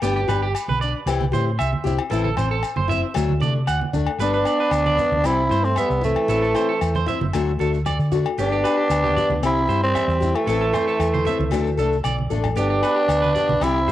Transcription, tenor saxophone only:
4.23 D4
5.26 E4
5.64 C4
5.79 B3
6.05 A3
8.40 D4
9.45 E4
9.83 C4
10.35 A3
12.58 D4
13.63 E4

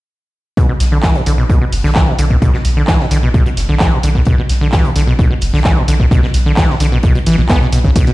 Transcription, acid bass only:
0.57 B2
0.69 B2
0.92 D3
1.03 E3
1.15 B2
1.26 D3
1.38 B2
1.50 B2
1.61 B2
1.84 D3
1.96 E3
2.07 B2
2.19 D3
2.30 B2
2.42 B2
2.54 B2
2.77 D3
2.88 E3
3.00 B2
3.11 D3
3.23 B2
3.34 B2
3.46 B2
3.69 D3
3.80 E3
3.92 B2
4.04 D3
4.15 B2
4.27 B2
4.38 B2
4.61 D3
4.73 E3
4.84 B2
4.96 D3
5.07 B2
5.19 B2
5.30 B2
5.53 D3
5.65 E3
5.77 B2
5.88 D3
6.00 B2
6.11 B2
6.23 B2
6.46 D3
6.57 E3
6.69 B2
6.80 D3
6.92 B2
7.04 B2
7.15 B2
7.27 E3
7.38 B2
7.50 B3
7.61 B2
7.73 B2
7.84 C#3
7.96 B2
8.07 B2

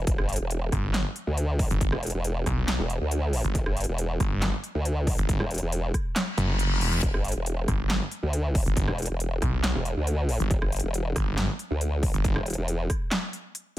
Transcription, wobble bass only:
0.07 E1
0.18 G1
0.40 E1
1.27 D2
1.92 E1
2.14 E1
2.79 E1
3.01 D2
3.55 E1
3.66 G1
3.88 E1
4.75 D2
5.40 E1
5.62 E1
7.03 E1
7.14 G1
7.36 E1
8.23 D2
8.88 E1
9.10 E1
9.75 E1
9.97 D2
10.51 E1
10.62 G1
10.84 E1
11.71 D2
12.36 E1
12.58 E1

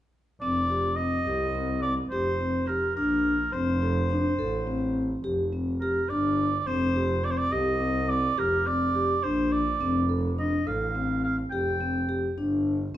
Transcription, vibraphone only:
0.42 C4
0.70 G4
0.98 C4
1.27 G4
1.55 C4
2.12 G4
2.40 C4
2.69 G4
2.97 D4
3.54 C4
3.82 A4
4.10 D4
4.39 A4
4.67 C4
5.24 G4
5.53 C4
5.82 G4
6.10 D4
6.67 C4
6.96 G4
7.24 C4
7.52 G4
7.80 C4
8.38 G4
8.67 C4
8.95 G4
9.24 D4
9.80 C4
10.09 A4
10.38 D4
10.67 A4
10.95 C4
11.52 G4
11.80 C4
12.09 G4
12.38 D4

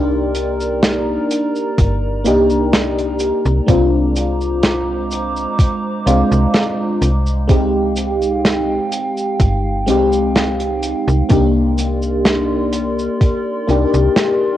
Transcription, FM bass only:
Already playing: C2
1.78 G1
2.26 C2
3.46 C2
3.69 C2
6.06 C2
6.31 C2
7.01 C2
9.40 G1
9.87 C2
11.08 C2
11.30 C2
13.68 C2
13.94 C2

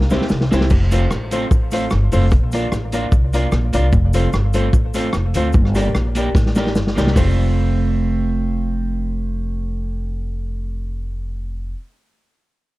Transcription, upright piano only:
0.11 E4 G4 C5
0.53 E4 G4 C5
0.92 F4 A4 C5
1.31 F4 A4 C5
1.72 F4 A4 C5
2.12 F4 A4 C5
2.54 F4 A#4 D5
2.93 F4 A#4 D5
3.34 F4 A#4 D5
3.74 F4 A#4 D5
4.14 F4 A4 C5
4.54 F4 A4 C5
4.94 F4 A4 C5
5.35 F4 A4 C5
5.76 G4 A#4 D5
6.17 G4 A#4 D5
6.57 G4 A#4 D5
6.97 G4 A#4 D5
7.16 F4 A4 C5

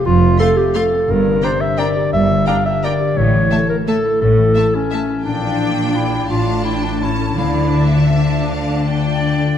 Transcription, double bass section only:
0.06 F1
1.09 G1
2.13 G1
3.17 A1
4.22 A1
5.26 A#1
6.30 A1
7.40 D2

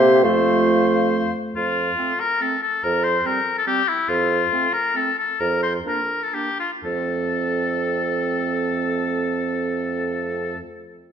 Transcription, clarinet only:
Already playing: A#3
0.24 A3
1.97 C4
2.41 C4
3.25 C4
3.67 C4
4.52 C4
4.95 C4
5.85 D4
6.34 D4
6.84 C4

